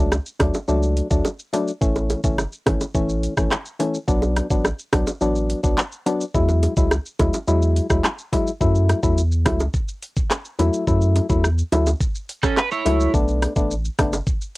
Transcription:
Already playing: C#2 F#3 A3 D4
0.12 cross-stick, high bongo, shaker
0.26 shaker
0.40 D2 F#3 A3 D4, kick, cross-stick, closed hi-hat, high bongo, low bongo, shaker
0.54 high bongo, shaker
0.68 C#2 F#3 A3 D4, shaker
0.83 shaker
0.97 closed hi-hat, shaker
1.11 D2 F#3 A3 D4, kick, shaker
1.25 high bongo, shaker
1.39 shaker
1.53 F#3 A3 D4, closed hi-hat, low bongo, shaker
1.68 shaker
1.81 A1 E3 A3 C#4, kick, shaker
1.96 high bongo, shaker
2.10 closed hi-hat, high bongo, shaker
2.24 F#1 E3 A3 C#4, kick, shaker
2.38 cross-stick, high bongo, shaker
2.53 shaker
2.66 G#1 E3 A3 C#4, kick, cross-stick, closed hi-hat, high bongo, low bongo, shaker
2.81 high bongo, shaker
2.95 A1 E3 A3 C#4, kick, shaker
3.09 shaker
3.23 closed hi-hat, shaker
3.37 G#1 E3 A3 C#4, kick, cross-stick, shaker
3.51 cross-stick, clap, high bongo, shaker
3.66 shaker
3.79 E3 A3 C#4, closed hi-hat, low bongo, shaker
3.94 shaker
4.08 B1 F#3 B3 D4, kick, shaker
4.22 high bongo, shaker
4.36 cross-stick, closed hi-hat, high bongo, shaker
4.50 A1 F#3 B3 D4, kick, shaker
4.65 cross-stick, high bongo, shaker
4.79 shaker
4.93 B1 F#3 B3 D4, kick, cross-stick, closed hi-hat, high bongo, low bongo, shaker
5.07 high bongo, shaker
5.21 A1 F#3 B3 D4, shaker
5.36 shaker
5.50 closed hi-hat, shaker
5.63 B1 F#3 B3 D4, kick, shaker
5.77 clap, high bongo, shaker
5.92 shaker
6.06 F#3 B3 D4, closed hi-hat, low bongo, shaker
6.21 shaker
6.34 E2 F#3 G#3 E4, kick, shaker
6.49 high bongo, shaker
6.63 closed hi-hat, high bongo, shaker
6.77 C#2 F#3 G#3 E4, kick, shaker
6.91 cross-stick, high bongo, shaker
7.06 shaker
7.19 D2 F#3 G#3 E4, kick, closed hi-hat, high bongo, low bongo, shaker
7.34 high bongo, shaker
7.48 E2 F#3 G#3 E4, shaker
7.62 shaker
7.76 closed hi-hat, shaker
7.90 D2 F#3 G#3 E4, kick, cross-stick, shaker
8.04 cross-stick, clap, high bongo, shaker
8.18 shaker
8.32 F#3 G#3 E4, kick, closed hi-hat, low bongo, shaker
8.47 shaker
8.61 F#2 F#3 A3 E4, kick, shaker
8.75 shaker
8.89 cross-stick, closed hi-hat, high bongo, shaker
9.03 E2 F#3 A3 E4, kick, shaker
9.18 shaker
9.32 shaker
9.45 C#2 F#3 A3 E4, kick, cross-stick, closed hi-hat, high bongo, low bongo, shaker
9.60 high bongo, shaker
9.74 kick, shaker
9.88 shaker
10.02 closed hi-hat, shaker
10.16 kick, shaker
10.31 clap, high bongo, shaker
10.45 shaker
10.59 E2 F#3 A3 E4, closed hi-hat, low bongo, shaker
10.74 shaker
10.87 F#2 F#3 A3 E4, kick, shaker
11.01 shaker
11.16 closed hi-hat, high bongo, shaker
11.29 E2 F#3 A3 E4, kick, shaker
11.44 cross-stick, shaker
11.58 shaker
11.72 D2 F#3 A3 E4, closed hi-hat, high bongo, low bongo, shaker
11.86 high bongo, shaker
12.00 kick, shaker
12.15 shaker
12.29 closed hi-hat, shaker
12.43 C#4 A4, kick, cross-stick, shaker
12.57 B4, clap, high bongo, shaker
12.71 E4 C#5, shaker
12.85 C#2 F#3 A3 E4, closed hi-hat, low bongo, shaker
13.00 shaker
13.14 B1 A3 B3 D4, kick, shaker
13.28 shaker
13.42 cross-stick, closed hi-hat, high bongo, shaker
13.56 A1 A3 B3 D4, kick, shaker
13.71 shaker
13.85 shaker
13.99 F#1 A3 B3 D4, kick, cross-stick, closed hi-hat, high bongo, low bongo, shaker
14.13 high bongo, shaker
14.27 kick, shaker
14.41 shaker

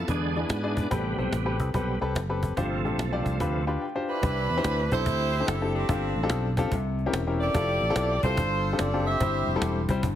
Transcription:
0.05 E2 A4, cajon bass
0.09 D3 E3 G#3 B3 D4 E4 G#4 B4
0.35 D4 E4 G#4 D5, cajon slap
0.49 G#2, cajon bass, cajon slap
0.63 D4 E4 G#4 D5
0.77 cajon bass
0.91 A1 A2 C3 G3 B3 C4 G4 A4 B4, cajon bass
1.18 B1 C4 G4 A4 C5, cajon slap
1.32 A1, cajon slap
1.46 C4 G4 A4 B4
1.59 C2, cajon bass
1.74 B1 C3 G3 B3 C4 G4 A4 B4, cajon bass
2.01 C2 C4 G4 A4 B4, cajon slap
2.15 F#1, cajon bass, cajon slap
2.29 C4 G4 A4 B4
2.43 cajon bass
2.56 G1 G2 C3 F3 A3 D4 F4 G4 C5, cajon bass
2.83 A1 D4 F4 G4 A4, cajon slap
2.97 B1, cajon slap
3.12 D4 F4 G4 D5
3.25 C2, cajon bass, cajon slap
3.39 D2 C3 F3 A3 D4 F4 G4 B4, cajon bass
3.67 D4 F4 G4 B4 C6, cajon slap
3.81 G5
3.95 D4 F4 G4 C5
4.08 D4 E4 B4 G5
4.23 C2 C3 C4 D4 E4 G4 B4, cajon bass
4.50 E2, cajon slap
4.57 C4 D4 E4 G4 C5
4.64 D2, cajon slap
4.91 B1 C4 D4 E4 G4 A4 C5, cajon bass
5.06 D2, cajon bass
5.40 C4 D4 E4 G4 A4
5.47 F#1 A4, cajon slap
5.61 C4 D4 E4 G4 A4
5.75 C4 D4 G4, cajon slap
5.88 G1 G2 C4 D4 F4 G4 A4, cajon bass
6.16 A1, cajon slap
6.23 C4 D4 F4 G4 A4
6.30 B1, cajon slap
6.57 C4 D4 F4 G4 A4, cajon bass
6.71 C2 C3, cajon bass
6.99 cajon slap
7.06 C4 C#4 E4 G4 A#4
7.13 E1, cajon slap
7.27 C4 C#4 E4 G4 A#4
7.41 G4 A4 D5, cajon slap
7.54 F1 C4 E4 F4 G4 A4, cajon bass
7.81 A1, cajon slap
7.90 C4 E4 F4 G4 A4
7.95 B1, cajon slap
8.23 C2 C4 E4 F4 G4 A4 C5, cajon bass
8.37 G1 G2, cajon bass
8.65 cajon slap
8.72 C4 D4 F4 G4 A4
8.79 F#1 D5, cajon slap
8.93 C4 D4 F4 G4 A4
9.06 G4 C5 E5, cajon slap
9.20 G1 G2 G3 C4 E4 G4 C5, cajon bass
9.47 F1, cajon slap
9.56 G3 C4 E4 G4 A4
9.61 E1, cajon slap
9.88 C2 G3 C4 E4 G4 C5, cajon bass, cajon slap
10.03 G1 G2, cajon bass

